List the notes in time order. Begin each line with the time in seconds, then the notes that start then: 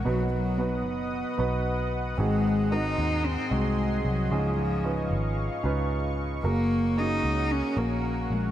Already playing: F#5
0.05 B1 B2 F#3 B3 D#4 F#4 B4 D#5 D#6
0.33 F#3
0.58 B3 D#4 F#4 B4
0.86 F#1
1.38 B1 B3 D#4 F#4 B4
2.18 G#1 G#2 D#3 G#3 C4 D#4 F#4 G#4 D#5 C6
2.71 C4 D#4 F#4 A#4
2.98 D#2
3.25 C4
3.50 C2 G#3 C4 D#4 F#4 G#4
4.05 C2 F#3
4.30 C#2 G#2 F3 C#4 D#4 F4 G#4 F5 C#6
4.58 F3
4.84 C#4 D#4 F4 B4
5.11 G#1
5.63 C#2 C#4 D#4 F4 B4
6.43 F#1 C#3 A#3 C#4 F#4 A#4 C#5 F#5
6.97 A#3 C#4 D#4 F#4 G#4
7.24 C#2
7.51 C#4
7.76 A#1 A#3 C#4 F#4 A#4
8.30 A#1 G#3